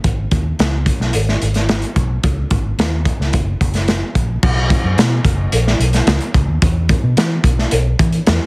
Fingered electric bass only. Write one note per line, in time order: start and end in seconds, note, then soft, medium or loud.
0.04 0.24 G#1 medium
0.31 0.52 D#2 medium
0.59 0.89 C#2 medium
1.00 1.10 B1 medium
1.15 1.35 G#1 medium
1.42 1.82 G#1 medium
1.96 2.17 B1 medium
2.24 2.44 C#2 medium
2.51 2.71 G#1 medium
2.78 3.09 D#2 medium
3.20 3.30 C#2 medium
3.34 3.54 F#1 loud
3.61 4.01 F#1 medium
4.15 4.36 A#1 medium
4.43 4.73 B1 medium
4.84 4.94 F#2 medium
4.98 5.18 B2 loud
5.24 5.45 F#1 loud
5.53 5.73 A#1 loud
5.79 6.00 B1 medium
6.07 6.17 C#2 medium
6.35 6.45 C#2 loud
6.48 6.59 D#2 medium
6.62 6.93 E2 medium
7.03 7.14 B2 medium
7.17 7.37 E3 loud
7.44 7.64 B1 medium
7.72 7.92 B1 loud
7.99 8.20 E3 medium
8.28 8.38 E2 loud